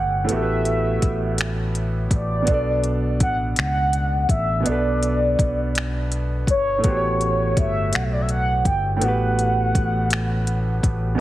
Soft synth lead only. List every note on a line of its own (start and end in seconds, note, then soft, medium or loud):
0.00 0.31 F#5 medium
0.33 1.72 E5 medium
2.14 3.18 D5 medium
3.23 3.37 F#5 medium
3.59 4.26 F#5 loud
4.31 4.68 E5 medium
4.67 6.12 D5 medium
6.50 7.54 C#5 medium
7.58 7.96 E5 medium
7.94 8.05 F#5 medium
8.04 8.14 E5 medium
8.13 8.23 D5 medium
8.21 8.30 E5 medium
8.30 8.64 F#5 loud
8.67 8.94 G5 medium
8.96 9.05 G5 medium
9.03 10.85 F#5 loud